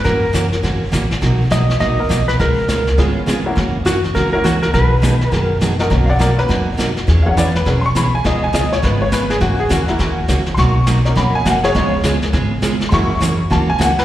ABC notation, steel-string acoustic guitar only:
X:1
M:4/4
L:1/8
Q:"Swing" 1/4=205
K:B
V:1 name="Steel-string acoustic guitar"
[C,E,A,CF] z [C,E,A,CF] z [C,E,A,CF] z [C,E,A,CF] z | [B,,F,A,DF] z [B,,F,A,DF] z [B,,F,A,DF] z [B,,F,A,DF] z | [C,G,B,^EG] z [C,G,B,EG] z [C,G,B,EG] z [C,G,B,EG] z | [C,E,A,CF] z [C,E,A,CF] z [C,E,A,CF] z [C,E,A,CF] z |
[B,,D,F,B,DG] z [B,,D,F,B,DG] z [B,,D,F,B,DG] z [B,,D,F,B,DG] z | [B,,F,A,DF] z [B,,F,A,DF] z [B,,F,A,DF] z [B,,F,A,DF] z | [E,B,CG] z [E,B,CG] z [E,B,CG] z [E,B,CG] z | [C,G,B,^EG] z [C,G,B,EG] z [C,G,B,EG] z [C,G,B,EG] z |
[C,E,A,CF] z [C,E,A,CF] z [C,E,A,CF] z [C,E,A,CF] z | [B,,F,A,DF] z [B,,F,A,DF] z [B,,F,A,DF] z [B,,F,A,DF] z | [C,G,B,^EG] z [C,G,B,EG] z [C,G,B,EG] z [C,G,B,EG] z | [C,E,A,CF] z [C,E,A,CF] z [C,E,A,CF] z [C,E,A,CF] z |]